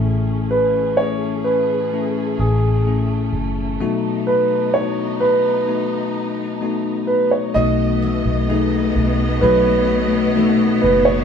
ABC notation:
X:1
M:4/4
L:1/16
Q:1/4=64
K:Bmix
V:1 name="Grand piano"
z2 B2 c2 B4 G4 z2 | z2 B2 c2 B8 B c | d8 B6 B c |]
V:2 name="Tine electric piano"
[A,CEG]4 [A,CEG]4 [A,CEG]4 [A,CEG]4 | [A,B,DF]4 [A,B,DEF]4 [A,B,DF]4 [A,B,DF]4 | [A,B,DF]4 [A,B,DG]4 [A,B,DF]4 [A,B,DF]4 |]
V:3 name="Tine electric piano" clef=bass
[A,,E,]4 z12 | [B,,F,]6 z8 z2 | z16 |]
V:4 name="String section"
[A,CG]16 | [B,D]16 | [A,B,d]16 |]
V:5 name="Steel-string acoustic guitar"
z16 | z16 | B,,2 A,2 D4 F,4 A,4 |]
V:6 name="Cello section" clef=bass
z16 | z16 | [B,,B,]16 |]
V:7 name="Fingered electric bass" clef=bass
A,,,8- A,,,2 A,,,4 F,,,2 | z16 | B,,,3 B,,,3 B,,,2 B,,,6 F,,,2 |]